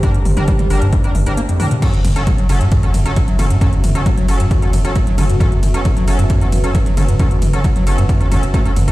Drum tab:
CC |----------------|x---------------|----------------|----------------|
RD |----------------|x-x-x-x-x-x-x-x-|x-x-x-x-x-x-x-x-|x-x-x-x-x-x-x-x-|
HH |xxoxxxoxxxoxxxox|xxoxxxoxxxoxxxox|xxoxxxoxxxoxxxox|xxoxxxoxxxoxxxox|
T2 |--oo-o----o---o-|--o-------o---o-|--o-------o---o-|--o-------o---o-|
BD |o---o---o-------|o---o---o---o---|o---o---o---o---|o---o---o---o---|

CC |----------------|
RD |x-x-x-x-x-x-x-x-|
HH |xxoxxxoxxxoxxxox|
T2 |--o-------o---o-|
BD |o---o---o---o---|